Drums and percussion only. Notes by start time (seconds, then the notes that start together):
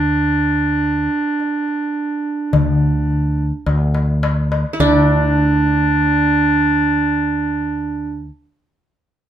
1.40 darbuka ka
1.68 darbuka ka
2.53 darbuka dum
3.10 darbuka ka
3.67 darbuka tek
3.95 darbuka ka
4.23 darbuka tek
4.52 darbuka ka
4.80 darbuka dum